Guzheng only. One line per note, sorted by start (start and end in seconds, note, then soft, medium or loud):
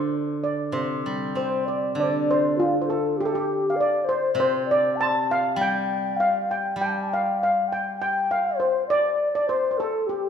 0.00 1.36 D3 soft
0.72 2.57 C3 soft
1.06 2.28 G3 soft
1.35 2.58 C4 soft
1.95 3.76 D3 soft
4.35 6.16 C3 medium
5.56 6.75 G3 medium
6.76 8.56 G3 soft